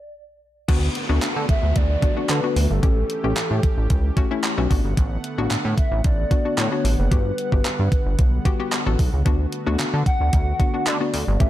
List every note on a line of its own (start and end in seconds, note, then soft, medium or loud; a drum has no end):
0.00 0.15 D5 loud
0.68 0.89 D2 loud
0.68 2.81 D3 medium
0.68 4.66 A3 medium
0.68 1.00 B3 medium
0.68 2.81 B3 medium
0.68 1.00 D4 medium
0.68 2.81 F#4 medium
0.68 1.00 F#4 loud
0.68 kick loud
0.68 closed hi-hat medium
0.68 crash loud
0.68 downlifter medium
0.95 closed hi-hat medium
1.09 1.19 D2 loud
1.09 1.82 B3 loud
1.09 1.82 D4 medium
1.09 1.83 F#4 loud
1.22 1.28 D3 soft
1.22 clap medium
1.22 clap loud
1.22 closed hi-hat loud
1.36 1.46 D3 loud
1.49 1.78 E5 loud
1.49 kick loud
1.49 closed hi-hat medium
1.63 1.73 D2 medium
1.76 1.96 D2 loud
1.76 2.31 D5 loud
1.76 kick loud
1.76 closed hi-hat medium
2.02 2.14 B3 medium
2.02 2.14 D4 medium
2.02 2.14 F#4 medium
2.02 kick loud
2.02 closed hi-hat medium
2.17 2.37 B3 medium
2.17 2.37 D4 medium
2.17 2.38 F#4 medium
2.29 2.40 D3 loud
2.29 2.72 B4 loud
2.29 clap medium
2.29 clap loud
2.29 closed hi-hat medium
2.43 2.75 B3 medium
2.43 2.75 D4 medium
2.43 2.75 F#4 medium
2.56 2.67 D2 medium
2.56 open hi-hat medium
2.70 2.80 G1 loud
2.70 4.31 A4 medium
2.83 3.03 A1 loud
2.83 4.69 E3 medium
2.83 3.14 A3 medium
2.83 3.15 C#4 medium
2.83 4.69 C#4 medium
2.83 4.69 G4 medium
2.83 3.15 G4 medium
2.83 kick loud
2.83 closed hi-hat medium
3.10 closed hi-hat medium
3.24 3.34 A1 loud
3.24 3.97 A3 medium
3.24 3.97 C#4 medium
3.24 3.97 G4 medium
3.37 3.43 A2 soft
3.37 clap medium
3.37 clap loud
3.37 closed hi-hat medium
3.51 3.60 A2 medium
3.63 kick loud
3.63 closed hi-hat medium
3.78 3.87 A1 medium
3.90 4.11 C#2 medium
3.90 kick loud
3.90 closed hi-hat medium
4.17 4.28 A3 loud
4.17 4.28 C#4 medium
4.17 4.28 F#4 loud
4.17 kick loud
4.17 closed hi-hat medium
4.31 4.52 A3 loud
4.31 4.52 C#4 medium
4.31 4.52 E4 loud
4.44 clap medium
4.44 clap loud
4.44 closed hi-hat medium
4.58 4.67 B1 medium
4.58 4.70 A3 medium
4.58 4.71 C#4 medium
4.58 4.70 F#4 medium
4.70 4.81 A1 medium
4.70 11.36 D3 medium
4.70 7.09 A3 medium
4.70 5.24 B3 medium
4.70 11.36 B3 medium
4.70 5.24 D4 medium
4.70 5.24 F#4 loud
4.70 9.22 F#5 medium
4.70 kick loud
4.70 open hi-hat medium
4.85 4.94 G1 medium
4.97 5.18 A1 loud
4.97 kick loud
4.97 closed hi-hat medium
5.24 closed hi-hat medium
5.38 5.48 A1 loud
5.38 6.11 B3 medium
5.38 6.11 D4 medium
5.38 6.11 F#4 loud
5.51 5.56 A2 soft
5.51 clap medium
5.51 clap loud
5.51 closed hi-hat medium
5.65 5.75 A2 loud
5.78 6.03 E5 loud
5.78 kick loud
5.78 closed hi-hat medium
5.92 6.01 A1 loud
6.04 6.25 A1 medium
6.04 6.54 D5 loud
6.04 kick loud
6.04 closed hi-hat medium
6.31 6.42 B3 medium
6.31 6.42 D4 medium
6.31 6.42 F#4 medium
6.31 kick loud
6.31 closed hi-hat medium
6.45 6.66 B3 medium
6.45 6.66 D4 medium
6.45 6.66 F#4 medium
6.58 6.69 A2 loud
6.58 7.00 C#5 loud
6.58 clap medium
6.58 clap loud
6.58 closed hi-hat medium
6.72 7.03 B3 medium
6.72 7.03 D4 medium
6.72 7.03 F#4 medium
6.85 6.95 A1 medium
6.85 open hi-hat medium
6.99 7.08 F#1 medium
6.99 8.59 B4 medium
7.11 7.32 G1 loud
7.11 9.24 G3 medium
7.11 7.43 B3 medium
7.11 7.43 F#4 medium
7.11 7.43 G4 medium
7.11 kick loud
7.11 closed hi-hat medium
7.38 closed hi-hat medium
7.52 7.62 G1 loud
7.52 8.25 B3 medium
7.52 8.25 F#4 medium
7.52 8.26 G4 medium
7.52 kick medium
7.65 7.71 G2 soft
7.65 clap medium
7.65 clap loud
7.65 closed hi-hat medium
7.79 7.89 G2 medium
7.92 kick loud
7.92 closed hi-hat medium
8.06 8.16 G1 medium
8.19 8.39 B1 medium
8.19 kick loud
8.19 closed hi-hat medium
8.45 8.56 B3 medium
8.45 8.57 F#4 medium
8.45 8.57 G4 loud
8.45 kick medium
8.45 closed hi-hat medium
8.59 8.80 B3 medium
8.59 8.80 F#4 medium
8.59 8.80 G4 loud
8.72 clap medium
8.72 clap loud
8.72 closed hi-hat medium
8.86 8.96 A1 loud
8.86 9.18 B3 medium
8.86 9.18 F#4 medium
8.86 9.18 A4 loud
8.99 9.10 B1 medium
8.99 kick medium
8.99 open hi-hat medium
9.13 9.23 C#2 medium
9.25 9.46 D2 loud
9.25 11.50 A3 medium
9.25 9.57 B3 medium
9.25 9.58 D4 medium
9.25 11.38 F#4 medium
9.25 9.58 F#4 loud
9.25 kick loud
9.25 closed hi-hat medium
9.52 closed hi-hat medium
9.66 9.76 D2 loud
9.66 10.40 B3 medium
9.66 10.40 D4 medium
9.66 10.40 F#4 loud
9.79 9.85 D3 soft
9.79 clap medium
9.79 clap loud
9.79 closed hi-hat medium
9.94 10.03 D3 loud
10.06 10.88 F#5 loud
10.06 kick loud
10.06 closed hi-hat medium
10.20 10.30 D2 medium
10.33 10.53 D2 medium
10.33 kick loud
10.33 closed hi-hat medium
10.59 10.71 B3 medium
10.59 10.71 D4 medium
10.59 10.71 F#4 medium
10.59 kick loud
10.59 closed hi-hat medium
10.74 10.94 B3 medium
10.74 10.95 D4 medium
10.74 10.95 F#4 medium
10.87 10.97 D3 loud
10.87 11.40 D5 loud
10.87 clap loud
10.87 closed hi-hat medium
11.00 11.32 B3 medium
11.00 11.32 D4 medium
11.00 11.32 F#4 medium
11.14 11.24 D2 medium
11.14 open hi-hat medium
11.28 11.37 G1 loud
11.40 11.50 A1 loud
11.40 11.50 E3 medium
11.40 11.50 A3 medium
11.40 11.50 C#4 medium
11.40 11.50 G4 medium
11.40 11.50 E5 loud
11.40 kick loud
11.40 closed hi-hat medium